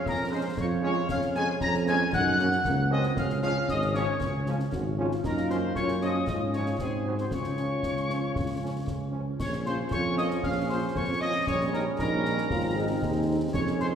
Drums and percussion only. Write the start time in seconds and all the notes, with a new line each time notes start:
0.06 concert bass drum, snare
0.57 concert bass drum, snare
1.09 concert bass drum, snare, crash
1.22 snare
1.35 snare
1.61 concert bass drum, snare
1.74 snare
1.86 snare
2.13 concert bass drum, snare
2.39 snare
2.52 snare
2.65 concert bass drum, snare
3.03 snare
3.17 concert bass drum, snare
3.30 snare
3.42 snare
3.69 concert bass drum, snare
3.82 snare
3.95 snare
4.21 concert bass drum, snare
4.46 snare
4.60 snare
4.72 concert bass drum, snare
5.11 snare
5.24 concert bass drum, snare, crash
5.37 snare
5.50 snare
5.75 concert bass drum, snare
5.88 snare
6.01 snare
6.27 concert bass drum, snare
6.53 snare
6.66 snare
6.79 concert bass drum, snare
7.18 snare
7.31 concert bass drum, snare
7.44 snare
7.57 snare
7.83 concert bass drum, snare
7.97 snare
8.10 snare
8.36 concert bass drum, snare
8.87 concert bass drum, snare
9.40 concert bass drum, snare, crash
9.53 snare
9.66 snare
9.91 concert bass drum, snare
10.18 snare
10.31 snare
10.43 concert bass drum, snare
10.95 concert bass drum, snare
11.47 concert bass drum, snare
11.60 snare
11.73 snare
11.99 concert bass drum, snare
12.25 snare
12.38 snare
12.50 concert bass drum, snare
13.02 concert bass drum, snare
13.54 concert bass drum, snare, crash
13.67 snare
13.80 snare